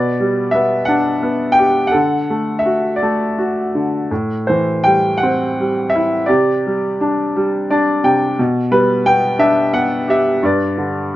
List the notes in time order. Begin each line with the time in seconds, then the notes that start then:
Already playing: B2 B4 D5
0.20 G3
0.51 B3 E5
0.85 D4 F#5
1.23 B3
1.52 G5
1.59 G4
1.87 F#5
1.92 D3 A4
2.30 A3
2.59 E5
2.66 F#4
2.96 D5
3.03 A3
3.38 F#4
3.75 D3
4.11 A2
4.47 E3 C5
4.84 G3 G5
5.17 F#5
5.23 C4
5.60 G3
5.90 E5
5.95 E4
6.26 C3 G4 D5
6.67 G3
7.01 D4
7.36 G3
7.70 D4 D5
8.04 C3 G5
8.39 B2
8.71 G3 B4
9.06 B3 G5
9.39 D4 E5
9.73 B3 F#5
10.08 G4 E5
10.43 G2 B4 D5
10.78 D3